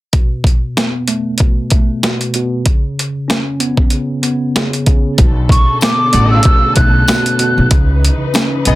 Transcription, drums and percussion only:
0.13 kick loud
0.13 closed hi-hat loud
0.44 kick medium
0.44 closed hi-hat medium
0.77 snare loud
0.77 snare medium
0.77 closed hi-hat loud
1.08 closed hi-hat medium
1.38 kick medium
1.38 closed hi-hat medium
1.70 kick medium
1.70 closed hi-hat medium
2.03 snare loud
2.03 snare medium
2.03 closed hi-hat medium
2.21 closed hi-hat medium
2.34 closed hi-hat medium
2.66 kick loud
2.66 closed hi-hat loud
2.99 closed hi-hat medium
3.30 snare loud
3.30 snare medium
3.30 closed hi-hat loud
3.60 closed hi-hat medium
3.77 kick medium
3.90 closed hi-hat medium
4.23 closed hi-hat medium
4.56 snare loud
4.56 snare medium
4.56 closed hi-hat medium
4.73 closed hi-hat medium
4.86 kick medium
4.86 closed hi-hat medium
5.18 kick loud
5.18 closed hi-hat loud
5.49 kick loud
5.49 closed hi-hat medium
5.81 snare loud
5.81 snare medium
5.81 closed hi-hat loud
5.81 tambourine medium
6.13 closed hi-hat medium
6.43 kick medium
6.43 closed hi-hat medium
6.76 kick medium
6.76 closed hi-hat medium
7.08 snare loud
7.08 snare medium
7.08 closed hi-hat medium
7.08 tambourine medium
7.26 closed hi-hat medium
7.39 closed hi-hat medium
7.71 kick loud
7.71 closed hi-hat loud
8.05 closed hi-hat medium
8.34 snare loud
8.34 closed hi-hat loud
8.34 tambourine medium
8.65 closed hi-hat medium

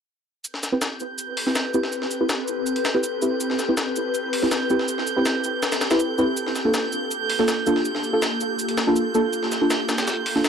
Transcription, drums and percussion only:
0.45 shaker medium
0.54 snare soft
0.63 snare medium
0.63 shaker medium
0.82 snare loud
0.82 shaker medium
1.00 shaker medium
1.18 shaker medium
1.37 open hi-hat medium
1.47 snare soft
1.55 snare loud
1.55 shaker medium
1.74 shaker medium
1.83 snare soft
1.92 shaker medium
2.02 snare soft
2.11 shaker medium
2.29 snare loud
2.29 shaker medium
2.48 shaker medium
2.66 shaker medium
2.76 closed hi-hat soft
2.85 snare loud
2.85 shaker medium
3.03 shaker medium
3.22 shaker medium
3.40 shaker medium
3.50 snare soft
3.59 snare medium
3.59 shaker medium
3.77 snare loud
3.77 shaker medium
3.96 shaker medium
4.14 shaker medium
4.33 open hi-hat medium
4.42 snare soft
4.51 snare loud
4.51 shaker medium
4.70 shaker medium
4.79 snare soft
4.88 shaker medium
4.98 snare soft
5.07 shaker medium
5.25 snare loud
5.25 shaker medium
5.44 shaker medium
5.63 snare loud
5.63 shaker medium
5.72 snare medium
5.72 shaker medium
5.81 snare loud
5.81 shaker medium
5.91 snare loud
5.91 shaker medium
6.00 shaker medium
6.18 shaker medium
6.37 shaker medium
6.46 snare soft
6.55 snare medium
6.55 shaker medium
6.74 snare loud
6.74 shaker medium
6.92 shaker medium
7.11 shaker medium
7.30 open hi-hat medium
7.39 snare soft
7.48 snare loud
7.48 shaker medium
7.67 shaker medium
7.76 snare soft
7.85 shaker medium
7.95 snare soft
8.04 shaker medium
8.22 snare loud
8.22 shaker medium
8.41 shaker medium
8.59 shaker medium
8.69 closed hi-hat soft
8.78 snare loud
8.78 shaker medium
8.96 shaker medium
9.15 shaker medium
9.33 shaker medium
9.43 snare soft
9.52 snare medium
9.52 shaker medium
9.70 snare loud
9.70 shaker medium
9.89 snare loud
9.89 shaker medium
9.98 snare loud
9.98 shaker medium
10.07 snare loud
10.07 shaker medium
10.26 open hi-hat medium
10.35 snare soft
10.44 snare loud
10.44 shaker medium

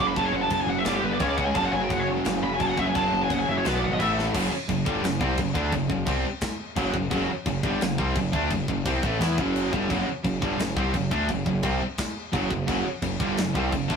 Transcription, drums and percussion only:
0.16 kick loud
0.16 crash medium
0.50 kick medium
0.50 crash medium
0.85 snare loud
0.85 crash medium
1.20 kick medium
1.20 crash medium
1.38 kick medium
1.55 kick loud
1.55 crash medium
1.90 kick medium
1.90 crash medium
2.25 snare loud
2.25 crash medium
2.60 kick medium
2.60 crash medium
2.77 kick medium
2.95 kick loud
2.95 crash medium
3.30 kick loud
3.30 crash medium
3.65 snare loud
3.65 crash medium
4.00 kick medium
4.00 crash medium
4.19 snare medium
4.35 kick loud
4.35 crash loud
4.35 crash medium
4.69 kick loud
4.69 crash medium
4.86 kick loud
5.04 snare loud
5.04 crash medium
5.21 kick loud
5.37 kick loud
5.37 crash medium
5.55 kick loud
5.72 kick loud
5.72 crash medium
5.90 kick medium
6.06 kick loud
6.06 crash medium
6.41 kick loud
6.41 snare loud
6.41 crash medium
6.76 kick loud
6.76 crash medium
6.94 kick medium
7.11 kick loud
7.11 crash medium
7.46 kick loud
7.46 crash medium
7.63 kick loud
7.81 snare loud
7.81 crash medium
7.98 kick loud
8.15 kick medium
8.15 crash medium
8.33 kick loud
8.50 kick medium
8.50 crash medium
8.68 kick medium
8.85 kick loud
8.85 crash medium
9.03 kick loud
9.21 snare loud
9.21 crash medium
9.38 kick loud
9.56 crash medium
9.73 kick loud
9.90 kick loud
9.90 crash medium
10.25 kick medium
10.25 crash medium
10.42 kick loud
10.59 snare loud
10.59 crash medium
10.77 kick loud
10.94 kick medium
10.94 crash medium
11.11 kick loud
11.29 kick loud
11.29 crash medium
11.46 kick medium
11.63 kick loud
11.63 crash medium
11.98 kick loud
11.98 snare loud
11.98 crash medium
12.33 kick loud
12.33 crash medium
12.51 kick loud
12.68 kick loud
12.68 crash medium
13.02 kick loud
13.02 crash medium
13.20 kick loud
13.37 snare loud
13.37 crash medium
13.55 kick loud
13.72 kick medium
13.72 crash medium
13.90 kick loud

